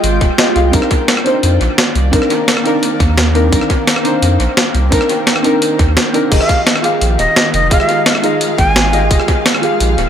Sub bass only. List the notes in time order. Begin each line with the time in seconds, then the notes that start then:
0.04 G#1
0.21 D#1
0.56 C2
0.73 C2
1.43 F2
1.61 A#1
1.95 C2
2.13 C2
3.00 D#2
3.52 C2
4.22 F2
4.40 A#1
4.74 C2
4.92 C2
5.79 D#2
6.32 F1
7.01 A#1
7.19 D#1
7.54 F1
7.71 F1
8.58 G#1
9.11 F1
9.80 A#1
9.98 D#1